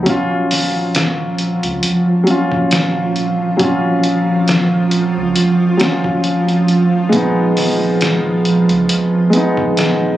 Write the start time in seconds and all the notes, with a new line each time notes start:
0.03 D#1 F3 F#3 C#4 F4, kick, closed hi-hat
0.09 F4
0.51 snare, open hi-hat
0.95 snare, closed hi-hat
1.38 closed hi-hat
1.63 C#2, closed hi-hat
1.83 closed hi-hat
2.24 F#3 C#4, closed hi-hat
2.30 F4
2.52 A#1, kick
2.71 snare, closed hi-hat
3.15 D#1, closed hi-hat
3.57 D#1 F#3 C#4, kick, closed hi-hat
3.63 F4
4.04 closed hi-hat
4.48 snare, closed hi-hat
4.91 closed hi-hat
5.17 C#2
5.36 closed hi-hat
5.77 F#3 C#4, snare, closed hi-hat
5.83 F4
6.04 kick
6.24 closed hi-hat
6.48 closed hi-hat
6.68 closed hi-hat
7.09 D#1 G#3 B3, kick, closed hi-hat
7.15 D#4
7.57 snare, open hi-hat
8.01 snare, closed hi-hat
8.45 closed hi-hat
8.69 C#2, closed hi-hat
8.89 closed hi-hat
9.30 G#3 B3, closed hi-hat
9.36 D#4
9.57 A#1, kick
9.77 snare, closed hi-hat